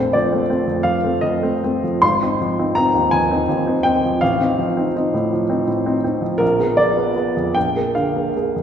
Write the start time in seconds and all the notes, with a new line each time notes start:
Already playing: A#1 A3 C4 C5
0.13 F3 D5
0.32 A3 C4
0.49 A3 C4
0.67 F2
0.83 F3 F5
1.04 A3 C4
1.21 F2 D#5
1.43 A3 C4
1.64 A3 C4
1.84 F3
2.02 G#1 C6
2.22 C4 D#4
2.41 F3
2.59 C4 D#4
2.75 C4 D#4 A#5
2.94 D#2
3.11 F3 G#5
3.31 C4 D#4
3.48 D#2
3.67 C4 D#4
3.83 C4 D#4 G5
4.05 F3
4.21 A1 F5
4.40 C4 D#4
4.58 F3
4.77 C4 D#4
4.96 C4 D#4
5.14 A2
5.33 F3
5.49 C4 D#4
5.67 A2
5.86 C4 D#4
6.04 C4 D#4
6.22 F3
6.38 A#1 A#4
6.59 B3 G#4
6.77 F3 D5
6.97 B3 G#4
7.16 B3 G#4
7.36 F2
7.54 A#1 G5
7.76 A#3 G#4
7.95 D3 F5
8.16 A#3 G#4
8.36 A#3 G#4
8.56 F2